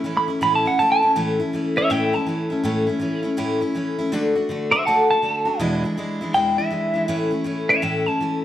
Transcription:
0.04 E3 A3 C#4 E4
0.17 B5
0.28 A3 C#4 E4
0.41 A2 E3 A3 C#4 E4 B5
0.55 A5
0.65 A3 C#4 E4 F#5
0.79 E3 A3 C#4 E4 A5
0.92 A5
1.02 A3 C#4 E4
1.16 A2 E3 A3 C#4 E4
1.39 A3 C#4 E4
1.53 E3 A3 C#4 E4
1.76 A3 C#4 E4 C#5 E5
1.90 A2 E3 A3 C#4 E4 E5 G5
2.13 A3 C#4 E4 A5
2.26 E3 A3 C#4 E4
2.50 A3 C#4 E4
2.64 A2 E3 A3 C#4 E4
2.87 A3 C#4 E4
3.00 E3 A3 C#4 E4
3.23 A3 C#4 E4
3.37 A2 E3 A3 C#4 E4
3.61 A3 C#4 E4
3.75 E3 A3 C#4 E4
3.98 A3 C#4 E4
4.12 D3 A3 D4 F#4
4.35 A3 D4 F#4
4.49 D3 A3 D4 F#4
4.71 D4 F#4 C5 E5
4.76 A3
4.85 D3 A3 D4 F#4 F#5 A5
5.10 A3 D4 F#4 A5
5.22 D3 A3 D4 F#4
5.45 A3 D4 F#4
5.59 E2 B2 E3 G#3 D4 E4
5.84 E3 G#3 D4 E4
5.97 E3 G#3 D4 E4
6.21 E3 G#3 D4 E4
6.34 E2 B2 E3 G#3 D4 E4 G5
6.58 E3 G#3 D4 E4 E5
6.71 E3 G#3 D4 E4
6.94 E3 G#3 D4 E4
7.08 A2 E3 A3 C#4 E4
7.31 A3 C#4 E4
7.44 E3 A3 C#4 E4
7.69 A3 C#4 E4 C#5 E5
7.82 A2 E3 A3 C#4 E4 E5 G5
8.06 A3 C#4 E4 A5
8.20 E3 A3 C#4 E4

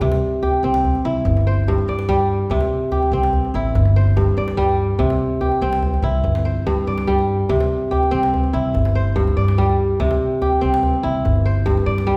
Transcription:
Already playing: E4 C5 D5
0.01 C2 C3, djembe bass
0.12 djembe slap, djembe tone
0.43 G4, djembe bass
0.53 djembe tone
0.63 C2 C4, djembe slap
0.74 djembe slap
0.85 djembe slap, djembe bass
0.95 djembe tone
1.05 C2 E4
1.25 G1, djembe bass
1.37 djembe slap, djembe tone
1.47 C5
1.68 G2, djembe bass
1.78 djembe tone
1.88 G2 D5
1.99 djembe slap
2.09 G3, djembe slap, djembe bass
2.19 djembe tone
2.50 C2 C3, djembe slap, djembe bass
2.61 djembe slap, djembe tone
2.81 djembe slap
2.92 G4, djembe bass
3.02 djembe slap, djembe tone
3.11 C2 C4
3.23 djembe slap
3.33 djembe bass
3.45 djembe tone
3.54 A1 E4
3.65 djembe slap
3.75 G1, djembe bass
3.85 djembe slap, djembe tone
3.96 C5
4.16 G2, djembe slap, djembe bass
4.26 djembe tone
4.37 G2 D5, djembe slap
4.48 djembe slap
4.57 G3, djembe bass
4.69 djembe slap, djembe tone
4.98 C2 C3, djembe slap, djembe bass
5.10 djembe slap, djembe tone
5.41 G4, djembe bass
5.52 djembe slap, djembe tone
5.61 C2 C4
5.73 djembe slap
5.83 djembe bass
5.94 djembe tone
6.02 C2 E4
6.15 djembe slap
6.24 G1, djembe bass
6.35 djembe slap, djembe tone
6.45 C5
6.67 G2, djembe slap, djembe bass
6.77 djembe tone
6.87 G2 D5, djembe slap
6.98 djembe slap
7.07 G3, djembe bass
7.18 djembe slap, djembe tone
7.49 C2 C3, djembe slap, djembe bass
7.60 djembe slap, djembe tone
7.81 djembe slap
7.91 G4, djembe bass
8.03 djembe slap, djembe tone
8.11 C2 C4
8.23 djembe slap
8.34 djembe bass
8.44 djembe tone
8.53 C2 E4
8.65 djembe slap
8.74 G1, djembe bass
8.85 djembe slap, djembe tone
8.95 C5
9.16 G2, djembe slap, djembe bass
9.28 djembe tone
9.37 G2 D5, djembe slap
9.48 djembe slap
9.58 G3, djembe bass
9.69 djembe slap, djembe tone
10.00 C2 C3, djembe slap, djembe bass
10.11 djembe slap, djembe tone
10.42 G4, djembe bass
10.52 djembe tone
10.61 C2 C4, djembe slap
10.74 djembe slap
10.83 djembe bass
10.94 djembe slap, djembe tone
11.03 C2 E4, djembe slap
11.25 G1, djembe bass
11.35 djembe tone
11.45 C5
11.57 djembe slap
11.66 G2, djembe bass
11.77 djembe slap, djembe tone
11.86 G2 D5
11.98 djembe slap
12.07 G3, djembe bass

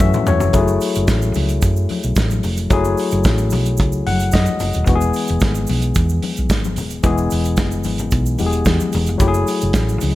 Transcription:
Already playing: E3 F#3 A3 C#4 F#4
0.00 F#2 E5, kick, muted conga
0.14 mid tom, muted conga, high conga, shaker
0.27 E2 C#5, floor tom, low conga, shaker
0.40 F1, floor tom, shaker
0.53 F#1 F#3 A3 E4 G#4, kick, closed hi-hat, muted conga, low conga, shaker
0.68 muted conga, shaker
0.81 open hi-hat, shaker
0.95 F#1, closed hi-hat, shaker
1.07 A1, kick, snare, closed hi-hat, muted conga, shaker
1.22 shaker
1.34 C#2, open hi-hat, high conga, shaker
1.49 closed hi-hat, shaker
1.62 F#2, kick, closed hi-hat, shaker
1.76 shaker
1.89 open hi-hat, high conga
2.03 B1, closed hi-hat, shaker
2.16 A1, kick, snare, closed hi-hat, shaker
2.30 high conga, shaker
2.43 F1, open hi-hat, low conga, shaker
2.57 closed hi-hat, shaker
2.70 F#1 F#3 A3 E4 G#4, kick, closed hi-hat, low conga, shaker
2.85 muted conga, shaker
2.97 open hi-hat, shaker
3.11 F#1, closed hi-hat, shaker
3.24 A1, kick, snare, closed hi-hat, muted conga, shaker
3.38 muted conga, shaker
3.50 B1, open hi-hat, high conga, shaker
3.66 closed hi-hat, shaker
3.77 C#2, kick, closed hi-hat, muted conga, shaker
3.92 shaker
4.07 F#1 F#5, open hi-hat, high conga
4.20 closed hi-hat, shaker
4.31 F#2 D#5, kick, snare, closed hi-hat, shaker
4.46 high conga, shaker
4.60 F#1, open hi-hat, low conga, shaker
4.73 D#1, closed hi-hat, shaker
4.86 E1 E3 G#3 B3 F#4, kick, closed hi-hat, muted conga, low conga, shaker
4.95 G#4
5.01 muted conga, shaker
5.13 open hi-hat, shaker
5.28 E1, closed hi-hat, shaker
5.40 G#1, kick, snare, closed hi-hat, muted conga, shaker
5.55 muted conga, shaker
5.67 B1, open hi-hat, high conga, shaker
5.82 closed hi-hat, shaker
5.95 E2, kick, closed hi-hat, muted conga, shaker
6.09 muted conga, shaker
6.22 open hi-hat, high conga
6.36 B1, closed hi-hat, shaker
6.49 G#1, kick, snare, closed hi-hat, shaker
6.64 high conga, shaker
6.76 D#1, open hi-hat, low conga, shaker
6.90 closed hi-hat, shaker
7.03 E1 E3 G#3 B3 G#4, kick, closed hi-hat, muted conga, low conga, shaker
7.18 muted conga, shaker
7.30 E1, open hi-hat, shaker
7.45 closed hi-hat, shaker
7.57 F#1, kick, snare, closed hi-hat, shaker
7.71 shaker
7.84 G#1, open hi-hat, high conga, shaker
7.98 closed hi-hat, low conga, shaker
8.11 B1, kick, closed hi-hat, muted conga, shaker
8.26 shaker
8.38 E1 E3 G#3 B3 G4, open hi-hat, high conga, shaker
8.46 G#4
8.53 closed hi-hat, shaker
8.65 E2, kick, snare, closed hi-hat, shaker
8.80 high conga, shaker
8.92 E1, open hi-hat, low conga, shaker
9.06 F1, closed hi-hat, shaker
9.18 F#1 F#3 A3 E4 G4, kick, closed hi-hat, low conga, shaker
9.28 G#4
9.34 muted conga, shaker
9.47 open hi-hat, shaker
9.61 F#1, closed hi-hat, shaker
9.73 A1, kick, snare, closed hi-hat, shaker
9.89 shaker
10.01 C#2, open hi-hat, high conga, shaker

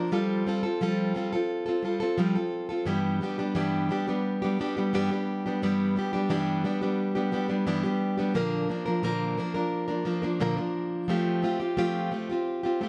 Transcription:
Already playing: F3 A#3 D4 A#4
0.11 F3 G3 C4 F4 A4
0.46 G3 C4 F4 A4
0.63 C4 F4 A4
0.81 F3 G3 C4 F4 A4
1.15 G3 C4 F4 A4
1.33 C4 F4 A4
1.66 C4 F4 A4
1.83 G3 C4 F4 A4
2.00 C4 F4 A4
2.18 F3 G3 C4 F4 A4
2.35 C4 F4 A4
2.69 C4 F4 A4
2.86 G2 E3 G3 B3 D4 G4
3.21 G3 B3 D4 G4
3.38 G3 B3 D4 G4
3.55 G2 E3 G3 B3 D4 G4
3.89 G3 B3 D4 G4
4.08 G3 B3 D4 G4
4.42 G3 B3 D4 G4
4.59 G3 B3 D4 G4
4.77 G3 B3 D4 G4
4.93 G2 E3 G3 B3 D4 G4
5.11 G3 B3 D4 G4
5.46 G3 B3 D4 G4
5.62 G2 E3 G3 B3 D4 G4
5.96 G3 B3 D4 G4
6.13 G3 B3 D4 G4
6.29 G2 E3 G3 B3 D4 G4
6.64 G3 B3 D4 G4
6.81 G3 B3 D4 G4
7.15 G3 B3 D4 G4
7.32 G3 B3 D4 G4
7.48 G3 B3 D4 G4
7.67 G2 E3 G3 B3 D4 G4
7.83 G3 B3 D4 G4
8.18 G3 B3 D4 G4
8.34 A#2 D3 F3 A#3 D4 A#4
8.69 F3 A#3 D4 A#4
8.86 F3 A#3 D4 A#4
9.03 A#2 D3 F3 A#3 D4 A#4
9.38 F3 A#3 D4 A#4
9.54 F3 A#3 D4 A#4
9.88 F3 A#3 D4 A#4
10.05 F3 A#3 D4 A#4
10.22 F3 A#3 D4 A#4
10.40 A#2 D3 F3 A#3 D4 A#4
10.57 F3 A#3 D4 A#4
11.08 F3 A3 C4 F4 G4
11.42 A3 C4 F4 G4
11.60 C4 F4 G4
11.77 F3 A3 C4 F4 G4
12.11 A3 C4 F4 G4
12.29 C4 F4 G4
12.63 C4 F4 G4
12.81 A3 C4 F4 G4

